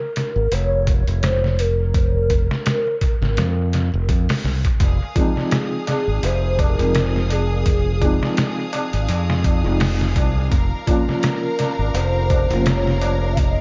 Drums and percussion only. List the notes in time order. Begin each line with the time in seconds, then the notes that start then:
0.16 snare, closed hi-hat
0.52 closed hi-hat
0.87 kick, closed hi-hat
1.08 closed hi-hat
1.23 snare, closed hi-hat
1.44 snare
1.59 closed hi-hat
1.94 kick, closed hi-hat
2.30 kick, closed hi-hat
2.51 snare
2.66 snare, closed hi-hat
3.01 kick, closed hi-hat
3.23 snare
3.37 snare, closed hi-hat
3.73 snare, closed hi-hat
4.09 kick, closed hi-hat
4.29 snare, open hi-hat
4.45 snare
4.65 kick, closed hi-hat
4.80 kick, closed hi-hat, tabla na
5.16 kick, closed hi-hat, tabla na
5.36 snare, tabla na
5.51 snare, closed hi-hat, tabla na
5.87 snare, closed hi-hat, tabla na
6.08 tabla na
6.23 closed hi-hat, tabla na
6.59 kick, closed hi-hat, tabla na
6.78 closed hi-hat, tabla na
6.95 snare, closed hi-hat, tabla na
7.16 snare
7.30 closed hi-hat, tabla na
7.51 tabla na
7.66 kick, closed hi-hat, tabla na
8.01 kick, closed hi-hat, tabla na
8.21 snare, tabla na
8.37 snare, closed hi-hat, tabla na
8.73 closed hi-hat, tabla na
8.93 closed hi-hat, tabla na
9.09 closed hi-hat, tabla na
9.30 snare
9.44 kick, closed hi-hat, tabla na
9.65 tabla na
9.80 snare, open hi-hat, tabla na
10.01 snare
10.16 kick, closed hi-hat, tabla na
10.36 tabla na
10.52 kick, closed hi-hat, tabla na
10.87 kick, closed hi-hat, tabla na
11.08 snare, tabla na
11.23 snare, closed hi-hat, tabla na
11.59 snare, closed hi-hat, tabla na
11.80 tabla na
11.94 closed hi-hat, tabla na
12.30 kick, closed hi-hat, tabla na
12.51 closed hi-hat, tabla na
12.66 snare, closed hi-hat, tabla na
12.87 snare
13.01 closed hi-hat, tabla na
13.22 tabla na
13.37 kick, closed hi-hat, tabla na